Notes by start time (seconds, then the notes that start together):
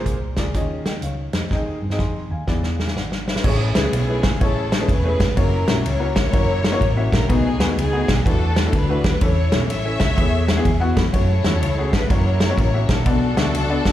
Already playing: A#2 A#3 F4
0.00 G#4 C5
0.06 C2, kick, closed hi-hat
0.36 D2 A#3 F4 G#4 D5, kick, snare, closed hi-hat
0.54 D#2 D#3 C#4 F4 G#4 D#5, kick, closed hi-hat
0.86 D#5 G5, snare, closed hi-hat
1.01 C#2 C#5 F5, closed hi-hat
1.33 F2 C5 D#5, snare, closed hi-hat
1.51 D#2 D#3 C4 D#4 G#4 D#5, kick, snare
1.82 G2
1.90 C4 D#4 G#4 D#5, snare
1.99 F2 G#5 C6, kick, snare
2.30 D#2 F5 G#5
2.47 E2 E3 B3 E4 G#4 D5, kick, snare
2.63 snare
2.79 E5 G#5, snare
2.88 snare
2.95 G#1 D5 F#5, snare
3.12 snare
3.27 B4 C#5 E5, snare
3.36 snare
3.43 A1 A2 A3 C#4 E4 G#4 C#5, kick, crash
3.75 C#2 A3 C#4 E4 G#4 B4, snare, ride
3.92 B1 C#4 E4 G#4, ride
4.08 A3 C#4 E4 G#4 B4
4.23 kick, snare, ride
4.40 A1 A3 C#4 E4 G#4 A4 C#5, kick, ride
4.72 snare, ride
4.79 A3 C#4 E4 G#4 B4
4.88 E1 E4 G#4 B4, kick, ride
5.04 A3 C#4 E4 G#4 B4
5.20 F1, kick, snare, ride
5.36 F#1 A#3 C#4 E4 F#4 A#4 C#5, kick, ride
5.68 A#1 A#3 C#4 E4 F#4 E5, snare, ride
5.86 C#2 E4 A#4 C#5, ride
5.99 A#3 C#4 E4 F#4 A#4
6.16 kick, snare, ride
6.32 F#1 A#3 C#4 E4 F#4 C#5, kick, ride
6.64 snare, ride
6.72 A#3 C#4 E4 F#4 C#5
6.81 A1, kick, ride
6.96 A#3 C#4 E4 F#4 E5
7.12 A#1 A#4, kick, snare, ride
7.28 B1 B2 A3 B3 D#4 F#4 G#4 B4, kick, ride
7.60 D#2 A3 B3 D#4 F#4 B4, snare, ride
7.77 C#2 D#4 G#4, ride
7.93 A3 B3 D#4 F#4 G#4
8.08 B1, kick, snare, ride
8.25 E2 E3 A3 D4 E4 F#4 A4 B4, kick, ride
8.56 snare, ride
8.66 A3 D4 E4 F#4 A4
8.73 D2 D4 F#4 B4, kick, ride
8.89 A3 D4 E4 F#4 B4
9.04 D#2, kick, snare, ride
9.21 E2 E3 C#4 E4 A4 C#5, kick, ride
9.52 B1 C#4 E4 A4, snare, ride
9.70 A1 A4 C#5 E5, ride
9.85 C#4 E4 A4
10.00 C#2, kick, snare, ride
10.17 E2 E3 B3 E4 G#4, kick, ride
10.48 E5, snare, ride
10.56 B3 E4 G#4
10.65 E2 G#5, kick, ride
10.80 B3 E4 F#4
10.96 F2 B5, kick, snare, ride
11.12 F#2 A3 C#4 E4 F#4 A4 C#5, kick, ride
11.44 E2 A3 C#4 E4 F#4 A4, snare, ride
11.62 C#2, ride
11.78 A3 C#4 E4 F#4 G#4
11.93 G#2 B4, kick, snare, ride
12.10 F#2 A#3 C#4 E4 F#4 A#4 C#5, kick, ride
12.40 snare, ride
12.50 A#3 C#4 E4 F#4 C#5
12.58 A1 C#5, kick, ride
12.74 A#3 C#4 E4 F#4 E5
12.89 A#1 D4 F#4 A4, kick, snare, ride
13.06 B1 B2 B3 D4 F#4 A4 D5, kick, ride
13.37 D2 B3 D4 F#4 A4 E5, snare, ride
13.54 C#2, ride
13.69 B3 D4 F#4 A4 D5
13.85 D2, kick, snare, ride